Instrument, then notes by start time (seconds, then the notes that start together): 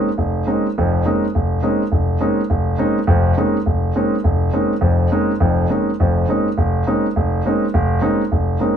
grand piano
0.18 F1
0.47 G#3 A#3 C4 C#4 D#4
0.78 F1 F2
1.05 G#3 A#3 C4 C#4 D#4
1.35 F1
1.63 G#3 A#3 C4 C#4 D#4
1.92 F1
2.21 G#3 A#3 C4 C#4 D#4
2.50 F1
2.78 G#3 A#3 C4 C#4 D#4
3.07 F1 F2
3.37 G#3 A#3 C4 C#4 D#4
3.66 F1
3.96 G#3 A#3 C4 C#4 D#4
4.24 F1
4.53 G#3 A#3 C4 C#4 D#4
4.81 F1 F2
5.12 G#3 A#3 C4 C#4 D#4
5.40 F1 F2
5.70 G#3 A#3 C4 C#4 D#4
6.00 F1 F2
6.29 G#3 A#3 C4 C#4 D#4
6.58 F1
6.87 G#3 A#3 C4 C#4 D#4
7.16 F1
7.45 G#3 A#3 C4 C#4 D#4
7.74 F1
8.01 G#3 A#3 C4 C#4 D#4
8.32 F1
8.60 G#3 A#3 C4 C#4 D#4